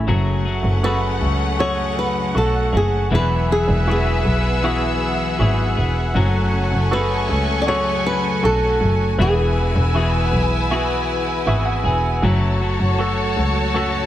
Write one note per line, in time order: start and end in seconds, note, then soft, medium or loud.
0.07 0.61 F#1 medium
0.07 0.46 F#2 medium
0.07 0.46 C#3 medium
0.07 3.08 F#3 medium
0.07 0.46 F#3 medium
0.07 3.08 A3 medium
0.07 0.46 A3 medium
0.07 3.09 A3 medium
0.07 3.08 C#4 medium
0.07 0.45 F#4 medium
0.07 0.44 G#4 medium
0.07 3.08 F#5 medium
0.07 12.20 F#5 medium
0.07 3.10 C#6 medium
0.45 0.82 F#3 soft
0.45 0.83 A3 soft
0.45 0.84 F#4 soft
0.45 0.84 G#4 medium
0.64 1.18 F#1 medium
0.83 1.60 F#3 medium
0.83 1.60 A3 medium
0.83 1.57 F#4 soft
0.83 1.61 F#4 medium
0.83 1.57 G#4 soft
0.83 1.61 G#4 medium
0.83 1.58 A4 medium
0.83 1.60 B4 medium
1.22 2.32 C#2 medium
1.59 2.36 F#2 medium
1.59 2.36 C#3 medium
1.59 2.34 F#3 medium
1.59 2.35 A3 medium
1.59 2.33 F#4 medium
1.59 2.36 F#4 medium
1.59 2.34 G#4 soft
1.59 2.38 G#4 medium
1.59 2.34 A4 medium
1.59 1.95 C#5 medium
1.99 2.37 B4 medium
2.35 2.71 B1 medium
2.35 2.73 F#3 medium
2.35 2.73 A3 medium
2.35 3.10 A3 soft
2.35 3.09 F#4 soft
2.35 2.73 F#4 medium
2.35 2.76 A4 medium
2.72 3.09 F#1 medium
2.72 3.10 F#3 soft
2.72 3.12 A3 soft
2.72 3.12 F#4 soft
2.72 3.11 G#4 soft
2.77 3.11 G#4 medium
3.10 3.65 E1 loud
3.10 3.87 E3 medium
3.10 6.12 E3 medium
3.10 3.86 F#3 medium
3.10 6.12 B3 medium
3.10 3.87 B3 medium
3.10 3.88 E4 medium
3.10 6.12 G#4 medium
3.10 3.89 G#4 medium
3.10 6.13 B4 medium
3.10 6.12 E5 medium
3.10 6.13 E6 medium
3.15 3.52 B4 loud
3.52 3.86 G#4 medium
3.68 4.21 E1 loud
3.87 4.63 F#3 medium
3.87 4.63 B3 medium
3.87 4.61 E4 medium
3.87 4.63 E4 medium
3.87 4.61 F#4 soft
3.87 4.61 G#4 medium
3.87 4.64 G#4 medium
3.91 4.62 G#4 medium
4.26 5.36 B1 loud
4.63 5.39 E3 medium
4.63 5.38 F#3 medium
4.63 5.39 B3 medium
4.63 5.37 E4 medium
4.63 5.40 E4 medium
4.63 5.38 F#4 soft
4.63 5.38 G#4 medium
4.63 5.41 G#4 medium
5.39 5.75 G#1 medium
5.39 5.77 F#3 medium
5.39 5.78 B3 medium
5.39 6.13 E4 soft
5.39 5.77 E4 medium
5.39 6.13 F#4 soft
5.39 6.13 G#4 medium
5.39 5.76 G#4 medium
5.77 6.13 E1 medium
5.77 6.16 B3 soft
5.77 6.16 E4 soft
5.77 6.15 G#4 medium
6.15 6.68 F#1 loud
6.15 6.91 F#2 medium
6.15 6.91 C#3 medium
6.15 9.15 F#3 medium
6.15 6.91 F#3 medium
6.15 6.91 A3 medium
6.15 9.17 A3 medium
6.15 9.16 C#4 medium
6.15 6.93 F#4 loud
6.15 6.94 G#4 medium
6.15 9.16 A4 medium
6.15 9.16 G#5 loud
6.15 9.17 C#6 medium
6.72 7.26 F#1 medium
6.91 7.68 F#3 medium
6.91 7.67 A3 medium
6.91 7.65 F#4 medium
6.91 7.69 F#4 medium
6.91 7.65 G#4 soft
6.91 7.69 G#4 medium
6.91 7.65 A4 medium
6.91 7.61 B4 medium
7.30 8.40 C#2 medium
7.62 7.68 D5 medium
7.67 8.43 F#2 medium
7.67 8.44 C#3 medium
7.67 8.42 F#3 medium
7.67 8.42 A3 medium
7.67 8.41 F#4 soft
7.67 8.44 F#4 medium
7.67 8.41 G#4 soft
7.67 8.45 G#4 medium
7.67 8.41 A4 medium
7.67 8.06 C#5 medium
8.06 8.41 B4 medium
8.42 8.79 B1 medium
8.42 9.18 F#3 medium
8.42 9.19 A3 medium
8.42 9.17 F#4 soft
8.42 9.20 F#4 medium
8.42 9.18 A4 medium
8.42 9.16 A4 medium
8.81 9.17 F#1 medium
9.19 9.72 E1 loud
9.19 12.19 E3 medium
9.19 9.57 E3 medium
9.19 9.58 B3 medium
9.19 12.20 E4 medium
9.19 9.57 F#4 medium
9.19 9.55 G#4 medium
9.19 10.68 G#4 medium
9.19 12.20 B4 medium
9.19 12.19 G#5 loud
9.19 12.21 E6 medium
9.56 9.94 B3 soft
9.56 9.95 F#4 soft
9.56 9.95 G#4 soft
9.76 10.29 E1 loud
9.94 10.69 E3 medium
9.94 10.70 B3 medium
9.94 10.69 E4 soft
9.94 10.69 F#4 soft
9.94 10.72 F#4 medium
9.94 10.69 G#4 medium
9.94 10.72 G#4 medium
10.33 11.43 B1 medium
10.71 11.45 E3 medium
10.71 11.46 B3 medium
10.71 11.45 E4 soft
10.71 11.45 F#4 soft
10.71 11.48 F#4 medium
10.71 11.45 G#4 medium
10.71 11.49 G#4 medium
11.46 11.82 G#1 medium
11.46 11.85 E3 medium
11.46 11.85 B3 medium
11.46 12.21 E4 soft
11.46 12.21 F#4 soft
11.46 11.85 F#4 medium
11.46 12.21 G#4 medium
11.46 11.83 G#4 medium
11.46 11.65 E5 medium
11.65 11.83 F#5 medium
11.84 12.20 E1 medium
11.84 12.24 B3 soft
11.84 12.23 F#4 soft
11.84 12.23 G#4 soft
11.84 12.20 G#5 medium
12.22 12.76 F#1 loud
12.22 12.61 F#2 medium
12.22 12.61 C#3 medium
12.22 14.06 F#3 medium
12.22 12.61 F#3 medium
12.22 12.61 A3 medium
12.22 14.06 F#4 medium
12.22 12.61 F#4 medium
12.22 14.06 A4 medium
12.22 14.06 C#5 medium
12.22 14.06 F#5 medium
12.22 14.06 A5 medium
12.22 14.06 C#6 medium
12.62 12.97 F#3 soft
12.62 12.98 A3 soft
12.62 12.99 F#4 medium
12.80 13.33 F#1 medium
12.98 13.75 F#3 medium
12.98 13.75 A3 medium
12.98 13.73 F#4 soft
12.98 13.76 F#4 medium
12.98 13.73 A4 medium
13.37 14.06 C#2 medium
13.74 14.06 F#2 medium
13.74 14.06 C#3 medium
13.74 14.06 F#3 medium
13.74 14.06 A3 medium
13.74 14.06 F#4 soft
13.74 14.06 F#4 medium
13.74 14.06 A4 medium